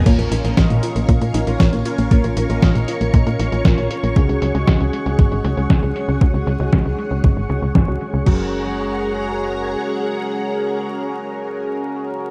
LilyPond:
<<
  \new Staff \with { instrumentName = "String machine" } { \time 4/4 \key fis \major \tempo 4 = 117 << { <cis'' cis'''>1~ | <cis'' cis'''>1~ | <cis'' cis'''>1~ | <cis'' cis'''>1 |
<gis' cis'' fis'' ais''>1~ | <gis' cis'' fis'' ais''>1 | } \\ { <ais' eis''>1~ | <ais' eis''>1 | <gis' fis''>1~ | <gis' fis''>1 |
r1 | r1 | } >> }
  \new Staff \with { instrumentName = "Analog polysynth" } { \time 4/4 \key fis \major <cis' eis' ais' cis''>8. <cis' eis' ais' dis''>2 <cis' eis' ais' cis''>8. <cis' eis' ais' cis''>8 | <cis' eis' ais' cis''>8. <cis' eis' ais' dis''>2 <cis' eis' ais' cis''>8. <cis' eis' ais' cis''>8 | <cis' fis' gis' cis''>8. <cis' fis' gis' dis''>2 <cis' fis' gis' cis''>8. <cis' fis' gis' cis''>8 | <cis' fis' gis' cis''>8. <cis' fis' gis' dis''>2 r8 <cis' fis' gis' cis''>8. |
<cis' fis' gis' ais'>1~ | <cis' fis' gis' ais'>1 | }
  \new Staff \with { instrumentName = "Synth arpeggio sound" } { \time 4/4 \key fis \major ais16 ais'16 dis'16 ais'16 eis16 ais,16 eis'16 ais16 ais16 ais'16 dis'16 ais'16 eis16 ais,16 eis'16 ais16 | ais16 ais'16 dis'16 ais'16 eis16 ais,16 eis'16 ais16 ais16 ais'16 dis'16 ais'16 eis16 ais,16 eis'16 ais16 | cis16 cis'16 fis16 cis'16 r16 cis,16 gis16 cis16 cis16 cis'16 fis16 cis'16 r16 cis,16 gis16 cis16 | cis16 cis'16 fis16 cis'16 gis,16 cis,16 gis16 cis16 cis16 cis'16 cis'16 b,16 cis16 cis16 dis16 cis16 |
fis8 r2. r8 | r1 | }
  \new Staff \with { instrumentName = "Analog synth bass" } { \clef bass \time 4/4 \key fis \major ais,,16 ais,,16 ais,,16 ais,,16 ais,,16 ais,,16 r16 ais,,16 ais,16 ais,16 ais,,16 ais,,16 ais,,16 ais,,16 r16 ais,,16 | ais,,16 ais,,16 ais,,16 ais,,16 ais,,16 ais,,16 r16 ais,,16 ais,16 ais,16 ais,,16 ais,,16 ais,,16 ais,,16 r16 ais,,16 | cis,16 cis,16 cis,16 cis,16 cis,16 cis,16 r16 cis,16 gis,,16 gis,,16 cis,16 cis,16 cis,16 cis,16 r16 cis,16 | cis,16 cis,16 cis,16 cis,16 cis,16 cis,16 r16 cis,16 gis,,16 gis,,16 cis,16 cis,16 gis,,16 cis,16 r16 cis,16 |
fis,,2. r4 | r1 | }
  \new DrumStaff \with { instrumentName = "Drums" } \drummode { \time 4/4 <cymc hh bd>16 hh16 hh16 hh16 <hh bd sn>16 hh16 hh16 hh16 <hh bd>16 hh16 hh16 hh16 <hh bd sn>16 hh16 hh16 hh16 | <hh bd>16 hh16 hh16 hh16 <hh bd sn>16 hh16 hh16 hh16 <hh bd>16 hh16 hh16 hh16 <hh bd sn>16 hh16 hh16 hh16 | <hh bd>16 hh16 hh16 hh16 <hh bd sn>16 hh16 hh16 hh16 <hh bd>16 hh16 hh16 hh16 <hh bd sn>16 hh16 hh16 hh16 | <hh bd>16 hh16 hh16 hh16 <hh bd sn>16 hh16 hh16 hh16 <hh bd>16 hh16 hh16 hh16 <hh bd sn>16 hh16 hh16 hh16 |
<cymc bd>4 r4 r4 r4 | r4 r4 r4 r4 | }
>>